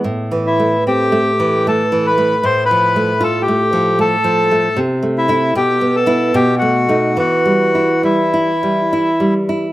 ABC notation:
X:1
M:3/4
L:1/16
Q:1/4=76
K:Flyd
V:1 name="Bandoneon"
z2 E2 G4 A2 B2 | c B3 A G3 A4 | [K:Em] z2 E2 G2 A2 G F3 | F4 E6 z2 |]
V:2 name="Nylon-string guitar"
(3A,,2 E,2 A,2 (3C2 A,2 E,2 (3A,2 E,2 A,2 | (3A,,2 F,2 A,2 (3F2 A,2 F,2 (3A,2 F,2 A,2 | [K:Em] (3C,2 A,2 [A,E]2 (3B,,2 B,2 [B,E]2 (3B,,2 A,2 [A,^D]2 | (3E,2 G,2 E2 (3G,2 E2 G,2 (3E2 G,2 E2 |]